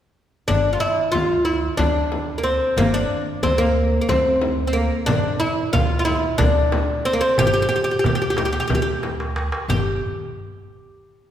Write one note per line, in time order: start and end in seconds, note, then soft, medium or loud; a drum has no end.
0.48 0.75 G1 medium
0.48 0.72 D4 medium
0.48 frame drum medium
0.73 0.80 F4 soft
0.80 1.11 E4 medium
1.12 1.66 D2 medium
1.12 1.44 F4 medium
1.12 frame drum medium
1.45 1.77 E4 medium
1.77 2.58 D2 medium
1.77 2.39 D4 medium
1.77 frame drum medium
2.12 frame drum medium
2.38 2.45 A#3 medium
2.43 2.78 C4 medium
2.76 3.04 G1 medium
2.76 2.93 A#3 medium
2.76 frame drum medium
2.94 3.43 D4 medium
3.42 3.96 D2 medium
3.42 3.60 C4 medium
3.42 frame drum medium
3.58 4.00 A#3 medium
4.01 4.09 A#3 medium
4.08 4.88 D2 medium
4.08 4.66 C4 medium
4.08 frame drum medium
4.42 frame drum medium
4.67 4.75 C4 medium
4.73 5.08 A#3 medium
5.06 5.35 G1 medium
5.06 5.39 D4 medium
5.06 darbuka dum medium
5.06 frame drum medium
5.40 5.72 E4 medium
5.73 6.27 D2 medium
5.73 5.98 F4 medium
5.73 darbuka dum medium
5.73 frame drum medium
5.99 6.04 F4 medium
6.05 6.38 E4 medium
6.05 frame drum medium
6.38 7.19 D2 medium
6.38 7.05 D4 medium
6.38 darbuka dum medium
6.38 frame drum medium
6.72 darbuka tek medium
6.72 frame drum medium
7.05 7.12 C4 medium
7.05 darbuka ka soft
7.13 7.20 A#3 medium
7.21 7.38 C4 medium
7.38 7.65 G1 medium
7.38 7.46 G4 medium
7.38 darbuka dum medium
7.38 frame drum medium
7.47 7.52 G4 medium
7.54 7.61 G4 medium
7.62 7.67 G4 medium
7.69 7.75 G4 medium
7.76 7.83 G4 medium
7.84 7.90 G4 medium
7.91 7.98 G4 soft
7.99 8.05 G4 medium
8.04 8.57 D2 medium
8.04 8.13 G4 soft
8.04 darbuka dum medium
8.04 frame drum medium
8.15 8.21 G4 medium
8.21 8.29 G4 soft
8.21 darbuka ka soft
8.30 8.36 G4 medium
8.37 8.44 G4 soft
8.37 darbuka tek medium
8.37 frame drum medium
8.45 8.51 G4 medium
8.53 8.59 G4 medium
8.60 8.66 G4 medium
8.68 9.49 D2 medium
8.68 8.74 G4 medium
8.68 darbuka dum medium
8.68 frame drum medium
8.75 8.81 G4 medium
8.82 8.89 G4 medium
8.87 darbuka ka soft
9.03 darbuka tek medium
9.03 frame drum medium
9.20 darbuka ka medium
9.36 darbuka tek medium
9.52 darbuka ka medium
9.68 9.99 G1 medium
9.68 10.00 G4 medium
9.68 frame drum medium
9.68 darbuka dum medium